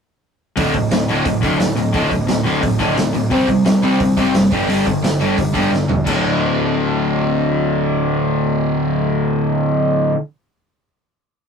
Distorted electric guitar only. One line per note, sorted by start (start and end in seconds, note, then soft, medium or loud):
0.57 0.73 D2 medium
0.57 0.74 A2 loud
0.57 0.74 D3 loud
0.75 0.90 D2 medium
0.75 0.90 A2 medium
0.91 1.07 D2 medium
0.91 1.07 A2 medium
1.08 1.25 D2 medium
1.08 1.25 A2 medium
1.08 1.26 D3 medium
1.26 1.41 D2 medium
1.26 1.41 A2 medium
1.43 1.59 D2 medium
1.43 1.59 A2 medium
1.43 1.60 D3 medium
1.61 1.76 D2 medium
1.61 1.76 A2 medium
1.78 1.93 D2 medium
1.78 1.93 A2 medium
1.94 2.10 D2 medium
1.94 2.11 A2 medium
1.94 2.11 D3 loud
2.11 2.27 D2 medium
2.11 2.27 A2 medium
2.28 2.44 D2 medium
2.28 2.44 A2 medium
2.46 2.61 D2 loud
2.46 2.61 A2 medium
2.46 2.62 D3 medium
2.62 2.78 D2 medium
2.62 2.78 A2 medium
2.79 2.95 D2 medium
2.79 2.95 A2 medium
2.79 2.96 D3 loud
2.96 3.12 D2 medium
2.96 3.12 A2 medium
3.14 3.29 D2 medium
3.14 3.30 A2 medium
3.31 3.46 C3 medium
3.31 3.47 G3 medium
3.31 3.48 C4 loud
3.48 3.63 C3 medium
3.48 3.64 G3 medium
3.65 3.81 C3 medium
3.65 3.81 G3 medium
3.82 3.99 C3 medium
3.82 3.99 G3 loud
3.82 3.99 C4 medium
4.00 4.15 C3 medium
4.00 4.15 G3 medium
4.17 4.33 C3 medium
4.17 4.33 G3 medium
4.17 4.34 C4 loud
4.34 4.50 C3 medium
4.34 4.50 G3 medium
4.51 4.66 G2 medium
4.51 4.67 D3 loud
4.51 4.67 G3 loud
4.68 4.84 G2 medium
4.68 4.85 D3 loud
4.68 4.85 G3 loud
4.86 5.01 G2 medium
4.86 5.02 D3 medium
5.02 5.18 G2 medium
5.02 5.18 D3 medium
5.19 5.36 G2 medium
5.19 5.36 D3 medium
5.19 5.37 G3 medium
5.37 5.52 G2 medium
5.37 5.53 D3 medium
5.53 5.70 G2 medium
5.53 5.70 D3 medium
5.53 5.71 G3 medium
5.72 5.87 G2 medium
5.72 5.87 D3 medium
5.88 6.04 G2 medium
5.88 6.05 D3 medium
6.04 10.11 D2 medium
6.04 10.14 A2 medium
6.08 10.16 D3 loud